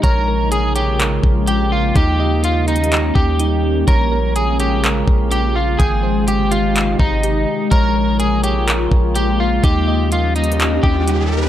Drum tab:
HH |x-----x--x--x-----x-----|x-----x--xxxx-----x-----|x-----x--x--x-----x-----|x-----x--x--x-----x-----|
CP |------------x-----------|------------x-----------|------------x-----------|------------x-----------|
BD |o--------------o--------|o--------------o--------|o--------------o--------|o--------------o--------|

HH |x-----x--x--x-----x-----|x-----x--xxxx-----x-----|
CP |------------x-----------|------------x-----------|
BD |o--------------o--------|o--------------o--------|